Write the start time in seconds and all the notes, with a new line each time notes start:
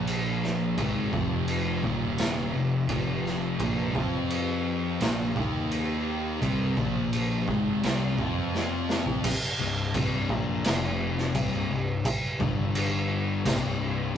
Already playing: A#1 A#2 F3 A#3
0.07 crash
0.44 snare
0.78 G#1 G#2 D#3 G#3, kick, crash
1.13 F1 F2 C3 F3, kick
1.48 crash
1.83 D#1 D#2 A#2 D#3, kick
2.18 snare, crash
2.54 F1 F2 C3
2.89 F1 F2 C3 F3, kick, crash
3.26 snare
3.60 A#1 A#2 F3 A#3, kick, crash
3.95 F2 F3 C4 F4, kick
4.30 crash
5.00 A#1 A#2 F3 A#3, snare, crash
5.36 D#2 D#3 A#3 D#4, kick
5.71 crash
6.41 C2 C3 G3 C4, kick, crash
6.77 A#1 A#2 F3 A#3, kick
7.13 crash
7.48 G#1 G#2 D#3 G#3, kick
7.83 C2 C3 G3 C4, snare, crash
8.18 F2 F3 C4 F4, kick
8.55 snare
8.89 snare
9.06 kick
9.24 kick, crash
9.60 C1 C2 G2
9.93 C1 C2 G2 C3, kick, crash
10.29 A#1 A#2 F3 A#3, kick
10.63 F1 F2 C3 F3, snare, crash
11.18 snare
11.35 C1 C2 G2 C3, kick, crash
11.70 C1 C2 G2
12.05 kick, crash
12.40 G1 G2 D3 G3, kick
12.75 crash
13.45 C1 C2 G2 C3, kick, snare, crash